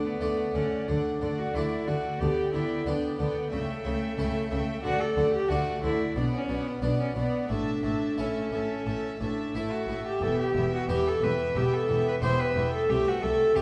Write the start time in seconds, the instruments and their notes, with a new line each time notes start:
Already playing: harpsichord D3, viola section A3, violin section D5 F#5
0.04 cello B3
0.20 double bass section D2, harpsichord D3 A3 D4, cello section D3, viola section A3, violin section D5 F#5
0.54 double bass section D2, harpsichord D3, cello section D3, viola section A3, cello C#4, violin section D5 F#5
0.87 double bass section D2, cello section D3, harpsichord D3, viola section A3, cello D4, violin section D5 F#5
1.20 double bass section D2, cello section D3, harpsichord D3, viola section A3, violin section D5 F#5
1.38 cello F#4
1.53 double bass section D2, cello section D3, harpsichord D3 A3 D4, viola section A3, cello E4, violin section D5 F#5
1.86 double bass section D2, cello section D3, harpsichord D3, viola section A3, cello F#4, violin section D5 F#5
2.20 double bass section D2, cello section D3, harpsichord D3, viola section B3, cello G4, violin section D5 G5
2.52 double bass section D2, cello section D3, harpsichord D3, viola section B3, cello E4, violin section D5 G5
2.86 double bass section D2, cello section D3, harpsichord D3 B3 D4, viola section B3, cello D4, violin section D5 G5
3.18 double bass section D2, cello section D3, harpsichord D3, cello B3, viola section B3, violin section D5 G5
3.51 double bass section C#2, cello section C#3, harpsichord C#3, cello A3, viola section A3, violin section E5 G5
3.84 double bass section C#2, cello section C#3, harpsichord C#3, viola section A3, violin section E5 G5
4.18 double bass section C#2, cello section C#3, harpsichord C#3 A3 E4, viola section A3, violin section E5 G5
4.50 double bass section C#2, cello section C#3, harpsichord C#3, viola section A3, violin section E5 G5
4.83 double bass section D2, cello section D3, harpsichord D3, viola section A3, cello F#4, violin section D5 F#5
5.00 cello A4
5.16 double bass section D2, cello section D3, harpsichord D3, viola section A3, violin section D5 F#5
5.34 cello G4
5.48 double bass section D2, cello section D3, harpsichord D3 A3 D4, viola section A3, cello F#4, violin section D5 F#5
5.82 double bass section D2, cello section D3, harpsichord D3, viola section A3, cello E4, violin section D5 F#5
6.15 double bass section B1, cello section B2, harpsichord B2, viola section B3, cello D4, violin section D5 F#5
6.33 cello C#4
6.49 double bass section B1, cello section B2, harpsichord B2, viola section B3, violin section D5 F#5
6.67 cello B3
6.82 double bass section B1, cello section B2, harpsichord B2 B3 D4, viola section B3, cello D4, violin section D5 F#5
7.00 cello C#4
7.15 double bass section B1, cello section B2, harpsichord B2, viola section B3, cello B3, violin section D5 F#5
7.49 double bass section A1, cello section A2, harpsichord A2, viola section A3, cello D4, violin section E5 A5
7.83 double bass section A1, harpsichord A2, cello section A2, viola section A3, violin section E5 A5
8.18 double bass section A1, cello section A2, harpsichord A2 A3 E4, viola section A3, cello C#4, violin section E5 A5
8.52 double bass section A1, cello section A2, harpsichord A2, viola section A3, violin section E5 A5
8.86 double bass section A1, cello section A2, harpsichord A2, viola section A3, violin section E5 A5
9.20 double bass section A1, cello section A2, harpsichord A2, viola section A3, cello D4, violin section E5 A5
9.54 double bass section A1, cello section A2, harpsichord A2 A3 E4, viola section A3, cello E4, violin section E5 A5
9.71 cello F#4
9.87 double bass section A1, cello section A2, harpsichord A2, viola section A3, violin section E5 A5
10.06 cello G4
10.21 double bass section E1, cello section E2, harpsichord E2, viola section B3, cello A4, violin section E5 G5
10.38 cello G4
10.55 double bass section E1, cello section E2, harpsichord E2, viola section B3, violin section E5 G5
10.74 cello F#4
10.88 double bass section E1, cello section E2, harpsichord E2 B3 E4 G4, viola section B3, cello G4, violin section E5 G5
11.07 cello A4
11.22 double bass section E1, cello section E2, harpsichord E2, viola section B3, cello B4, violin section E5 G5
11.55 double bass section E1, harpsichord E2, cello section E2, viola section B3, cello G4, violin section E5 G5
11.73 cello A4
11.88 double bass section E1, harpsichord E2, cello section E2, viola section B3, violin section E5 G5
12.08 cello B4
12.22 double bass section E1, cello section E2, harpsichord E2 B3 E4 G4, viola section B3, cello C5, violin section E5 G5
12.39 cello B4
12.55 double bass section E1, cello section E2, harpsichord E2, viola section B3, violin section E5 G5
12.73 cello A4
12.88 double bass section C2, cello section C2, harpsichord C2, viola section A3, cello G4, violin section E5 G5
13.08 cello F#4
13.22 cello section C2, double bass section C2, harpsichord C2, viola section A3, cello A4, violin section E5 G5
13.55 cello section C2, harpsichord C2 A3 E4 G4, double bass section C2, viola section A3, cello G4, violin section E5 G5